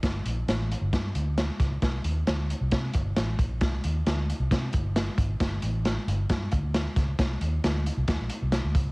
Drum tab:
HH |xxxxxxxx|xxxxxxxx|xxxxxxxx|xxxxxxxx|
SD |o-o-o-oo|o-o-o-o-|o-o-o-o-|o-o-o-oo|
BD |o---o--o|o---oo-o|o---oo-o|o---oo-o|

HH |xxxxxxxx|
SD |o-o-o-o-|
BD |o---o--o|